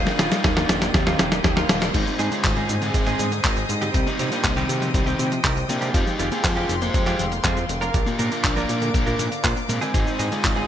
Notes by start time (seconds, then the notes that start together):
Already playing: G3 A#3 D#4 F4 A#4 F5 G5 D#6
0.06 D#3 D4 F4, snare, closed hi-hat
0.19 D#1 D3 G3 A#3 D#4 F4, snare, closed hi-hat, cabasa
0.32 G3 D#4, snare, closed hi-hat, cabasa
0.44 D#2 D#3, kick, snare, closed hi-hat, cabasa
0.56 D#3 G3 A#3 D4 F4, snare, closed hi-hat
0.69 D#1 D3, snare, closed hi-hat, cabasa
0.82 G3, snare, closed hi-hat, cabasa
0.94 D#2 D#3 C4, kick, snare, closed hi-hat, cabasa
1.07 D#3 G3 A#3 D#4 F4, snare, closed hi-hat
1.19 D#1 F3 G3 A#3 D#4 G4, snare, closed hi-hat, cabasa
1.32 D3, snare, closed hi-hat, cabasa
1.44 D#2 D#3, kick, snare, closed hi-hat, cabasa
1.56 D#3 G3 A#3 D#4 F4, snare, closed hi-hat
1.69 D#1 D3 G3 A#3, snare, closed hi-hat, cabasa
1.82 G3, snare, closed hi-hat, cabasa
1.94 G#1 G#2 C4 D#4 C5 D#5 G#5 D#6, kick, closed hi-hat, crash, cabasa
2.07 G#2, cabasa
2.19 G2 G#2 G#3 C4 D#4 G#4, closed hi-hat, cabasa
2.32 D3 G#3 F4, closed hi-hat, cabasa
2.44 G#1 G#2, kick, clap, closed hi-hat, cabasa
2.56 G#2 G#3 C4 D#4 G#4, closed hi-hat
2.69 G2 G#2, closed hi-hat, cabasa
2.82 D3 C4 G#4, closed hi-hat, cabasa
2.94 G#1 G#2, kick, closed hi-hat, cabasa
3.06 G#2 G#3 C4 D#4 G#4, clap, closed hi-hat, cabasa
3.19 G2 G#2, closed hi-hat, cabasa
3.32 D3, closed hi-hat, cabasa
3.44 G#1 G#2 G#3 C4 D#4 A#4, kick, clap, closed hi-hat, cabasa
3.57 G#2, closed hi-hat, cabasa
3.69 G2 G#2, closed hi-hat, cabasa
3.81 D3 G3 C4 D#4 G4, closed hi-hat, cabasa
3.94 C2 C3 G5, kick, closed hi-hat, cabasa
4.07 C3 C4 D#4, cabasa
4.19 A#2 C3 G3 C4 D#4 G4, closed hi-hat, cabasa
4.32 F3 A#3 D4, closed hi-hat, cabasa
4.44 C2 C3, kick, clap, closed hi-hat, cabasa
4.56 C3 D#3 G3 C4 D#4 G4, closed hi-hat, cabasa
4.69 A#2 C3, closed hi-hat, cabasa
4.82 F3, closed hi-hat, cabasa
4.94 C2 C3 D#3 C4, kick, closed hi-hat, cabasa
5.06 C3 G3 C4 D#4 G4, closed hi-hat, cabasa
5.19 A#2 C3, closed hi-hat, cabasa
5.32 F3, closed hi-hat, cabasa
5.44 C2 C3 G3 C4 D#4 A#4, kick, clap, closed hi-hat, cabasa
5.57 C3, closed hi-hat, cabasa
5.69 A#2 C3 A#3 D4, closed hi-hat, cabasa
5.81 F3 G#3 C4 F4 G4, closed hi-hat, cabasa
5.94 F2 F3 G#3 D#4 G4 F5 C6, kick, closed hi-hat, cabasa
6.07 F3, cabasa
6.19 F1 D#3 G#3 C4 F4 G4, closed hi-hat, cabasa
6.32 A#3 F4 G#4, closed hi-hat, cabasa
6.44 F2 F3, kick, clap, closed hi-hat, cabasa
6.56 F3 G#3 C4 F4 G4, closed hi-hat
6.69 F1 D#3, closed hi-hat, cabasa
6.82 A#3 G#4 C5, closed hi-hat, cabasa
6.94 F2 F3, kick, closed hi-hat, cabasa
7.06 F3 G#3 C4 F4 G4, clap, closed hi-hat, cabasa
7.19 F1 D#3, closed hi-hat, cabasa
7.32 A#3, closed hi-hat, cabasa
7.44 F2 F3 G#3 C4 F4 G#4, kick, clap, closed hi-hat, cabasa
7.57 F3, closed hi-hat, cabasa
7.69 F1 D#3, closed hi-hat, cabasa
7.81 A#3 D4 F4 A#4, closed hi-hat, cabasa
7.94 A#1 A#2 A#4 D5 D6, kick, closed hi-hat, cabasa
8.07 A#2 A#3 G4, cabasa
8.19 G#2 A#2 A#3 D4 F4 A#4, closed hi-hat, cabasa
8.32 D3 D4 F4, closed hi-hat, cabasa
8.44 A#1 A#2, kick, clap, closed hi-hat, cabasa
8.56 A#2 A#3 D4 F4 A#4, closed hi-hat, cabasa
8.69 G#2 A#2, closed hi-hat, cabasa
8.82 D3, closed hi-hat, cabasa
8.94 A#1 A#2 A#3 D4, kick, closed hi-hat, cabasa
9.06 A#2 A#3 D4 F4 A#4, closed hi-hat, cabasa
9.19 G#2 A#2, closed hi-hat, cabasa
9.32 D3, closed hi-hat, cabasa
9.44 A#1 A#2 A#3 D4 F4 C5, kick, clap, closed hi-hat, cabasa
9.57 A#2, closed hi-hat, cabasa
9.69 G#2 A#2 G#3 C4, closed hi-hat, cabasa
9.81 D3 G#3 C4 D#4 G#4, closed hi-hat, cabasa
9.94 G#1 G#2 C4 D#4 C5 D#5 G#5 D#6, kick, closed hi-hat, cabasa
10.07 G#2, cabasa
10.19 G2 G#2 G#3 C4 D#4 G#4, closed hi-hat, cabasa
10.32 D3 G#3 F4, closed hi-hat, cabasa
10.44 G#1 G#2, kick, clap, closed hi-hat, cabasa
10.56 G#2 G#3 C4 D#4 G#4, closed hi-hat